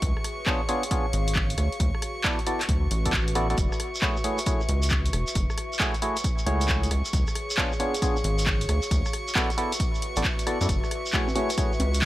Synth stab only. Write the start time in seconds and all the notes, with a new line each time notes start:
0.46 B3 D4 F4 G#4 C#5
0.69 B3 D4 F4 G#4 C#5
0.91 B3 D4 F4 G#4 C#5
2.24 B3 E4 F#4 A4 D5
2.47 B3 E4 F#4 A4 D5
3.06 B3 E4 F#4 A4 D5
3.35 B3 E4 F#4 A4 D5
3.50 B3 E4 F#4 A4 D5
4.02 A3 E4 F#4 G#4 C#5
4.24 A3 E4 F#4 G#4 C#5
4.46 A3 E4 F#4 G#4 C#5
5.80 A3 E4 F#4 G#4 C#5
6.02 A3 E4 F#4 G#4 C#5
6.46 A3 E4 F#4 G#4 C#5
7.58 B3 D4 F4 G#4 C#5
7.80 B3 D4 F4 G#4 C#5
8.02 B3 D4 F4 G#4 C#5
9.35 B3 E4 F#4 A4 D5
9.58 B3 E4 F#4 A4 D5
10.17 B3 E4 F#4 A4 D5
10.47 B3 E4 F#4 A4 D5
10.61 B3 E4 F#4 A4 D5
11.13 A3 E4 F#4 G#4 C#5
11.36 A3 E4 F#4 G#4 C#5
11.58 A3 E4 F#4 G#4 C#5